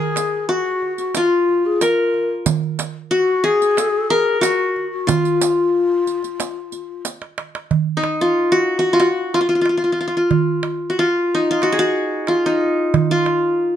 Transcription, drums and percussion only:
0.01 darbuka ka
0.16 riq, darbuka tek
0.82 darbuka ka
0.98 riq
1.15 riq, darbuka tek
1.49 darbuka ka
1.81 riq, darbuka tek
2.14 darbuka ka
2.46 riq, darbuka dum
2.64 darbuka ka
2.79 riq, darbuka tek
3.44 darbuka ka
3.62 riq
3.77 riq, darbuka tek
4.10 darbuka ka
4.43 riq, darbuka tek
4.76 darbuka ka
5.08 riq, darbuka dum
5.25 riq, darbuka ka
5.41 riq, darbuka tek
6.06 riq, darbuka ka
6.22 riq, darbuka ka
6.40 riq, darbuka tek
6.72 riq, darbuka ka
7.05 riq, darbuka tek
7.22 darbuka ka
7.38 darbuka tek
7.55 darbuka ka
7.71 darbuka dum
8.04 darbuka tek
9.00 darbuka tek
9.66 darbuka tek
9.99 darbuka ka
10.31 darbuka dum
10.63 darbuka tek
11.62 darbuka tek
12.27 darbuka tek
12.61 darbuka ka
12.94 darbuka dum
13.26 darbuka tek

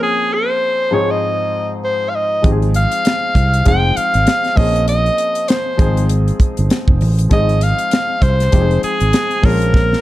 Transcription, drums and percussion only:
2.44 kick, closed hi-hat
2.62 closed hi-hat
2.74 closed hi-hat
2.91 closed hi-hat
3.05 snare, closed hi-hat
3.35 kick, closed hi-hat
3.54 closed hi-hat
3.66 kick, closed hi-hat
3.97 closed hi-hat
4.14 closed hi-hat
4.27 snare, closed hi-hat
4.44 snare, closed hi-hat
4.57 kick, open hi-hat
4.76 closed hi-hat
4.88 closed hi-hat
5.06 closed hi-hat
5.18 closed hi-hat
5.35 closed hi-hat
5.48 snare, closed hi-hat
5.79 kick, closed hi-hat
5.97 closed hi-hat
6.09 closed hi-hat
6.28 closed hi-hat
6.40 kick, closed hi-hat
6.57 closed hi-hat
6.70 snare, closed hi-hat
6.88 kick
7.01 open hi-hat
7.19 closed hi-hat
7.31 kick, closed hi-hat
7.49 closed hi-hat
7.61 closed hi-hat
7.78 closed hi-hat
7.91 snare, closed hi-hat
8.22 kick, closed hi-hat
8.40 snare, closed hi-hat
8.52 kick, closed hi-hat
8.71 closed hi-hat
8.83 closed hi-hat
9.00 closed hi-hat
9.13 snare, closed hi-hat
9.31 closed hi-hat
9.44 kick, open hi-hat
9.62 closed hi-hat
9.74 kick, snare
9.93 snare

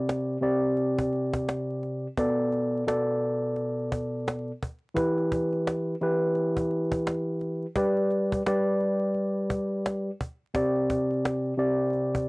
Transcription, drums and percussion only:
0.09 cajon slap
0.43 cajon slap
0.77 cajon slap
0.99 cajon bass
1.13 cajon slap
1.33 cajon bass
1.48 cajon slap
1.83 cajon slap
2.17 cajon bass
2.52 cajon slap
2.88 cajon slap
3.56 cajon slap
3.92 cajon bass
4.27 cajon slap
4.63 cajon bass
4.97 cajon bass
5.18 cajon slap
5.32 cajon bass
5.53 cajon slap
5.67 cajon slap
6.01 cajon slap
6.35 cajon slap
6.57 cajon bass
6.71 cajon slap
6.92 cajon bass
7.06 cajon slap
7.41 cajon slap
7.76 cajon bass
7.97 cajon slap
8.11 cajon slap
8.32 cajon bass
8.46 cajon slap
8.81 cajon slap
9.14 cajon slap
9.50 cajon bass
9.85 cajon slap
10.21 cajon bass
10.55 cajon bass
10.76 cajon slap
10.90 cajon bass
11.11 cajon slap
11.25 cajon slap
11.59 cajon slap
11.93 cajon slap
12.15 cajon bass

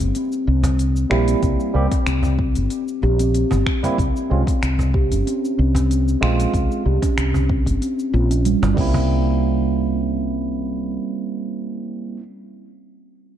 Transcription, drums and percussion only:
0.00 open hi-hat, cabasa
0.15 open hi-hat, cabasa
0.32 cabasa
0.63 cajon bass, cajon slap, open hi-hat, cabasa
0.79 open hi-hat, cabasa
0.96 cabasa
1.11 finger snap
1.28 open hi-hat, cabasa
1.43 kick, open hi-hat, cabasa
1.60 cabasa
1.92 kick, cajon slap, open hi-hat, cabasa
2.07 finger snap, open hi-hat, cabasa
2.23 cajon bass, cabasa
2.39 kick
2.55 open hi-hat, cabasa
2.70 open hi-hat, cabasa
2.88 cabasa
3.02 cajon slap
3.19 open hi-hat, cabasa
3.35 open hi-hat, cabasa
3.51 cajon bass, cajon slap, cabasa
3.66 finger snap, kick
3.84 cajon bass, open hi-hat, cabasa
3.98 kick, open hi-hat, cabasa
4.17 cabasa
4.47 kick, cajon slap, open hi-hat, cabasa
4.63 finger snap, open hi-hat, cabasa
4.79 cajon bass, cajon slap, cabasa
4.94 kick
5.12 open hi-hat, cabasa
5.27 open hi-hat, cabasa
5.45 cabasa
5.75 cajon bass, cajon slap, open hi-hat, cabasa
5.91 open hi-hat, cabasa
6.08 cabasa
6.23 finger snap
6.40 open hi-hat, cabasa
6.54 kick, open hi-hat, cabasa
6.72 cabasa
7.02 kick, cajon slap, open hi-hat, cabasa
7.18 finger snap, open hi-hat, cabasa
7.34 cajon bass, cabasa
7.49 kick
7.66 kick, open hi-hat, cabasa
7.82 open hi-hat, cabasa
7.99 cabasa
8.14 cajon slap
8.31 open hi-hat, cabasa
8.45 open hi-hat, cabasa
8.63 cajon bass, cajon slap, cabasa
8.77 kick, crash
8.94 cajon bass

